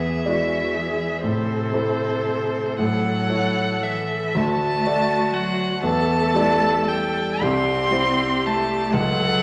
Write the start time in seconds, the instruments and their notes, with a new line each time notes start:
Already playing: grand piano E2, cello E3, viola G#4, violin E5
0.26 grand piano G#3 E4 D5, viola F#4
0.75 viola G#4
1.22 grand piano A2, cello C3, viola A4, violin C5
1.73 grand piano A3 E4 C5
2.79 grand piano A2, cello F#3, viola A4, violin F#5
3.29 grand piano A3 E4 C#5
3.83 cello E3, violin E5
4.35 grand piano D2, cello A3, viola F#4, violin A5
4.86 grand piano A3 F#4 D5
5.33 cello F#3, violin F#5
5.83 grand piano E2, cello A3, viola A4, violin A5
6.34 grand piano G3 E4 D5
6.88 cello G3, violin G5
7.41 grand piano C2, cello C4, viola G4, violin C6
7.91 grand piano G3 E4 C5
8.46 cello A3, violin A5
8.93 grand piano C#2, cello F#3, viola A4, violin F#5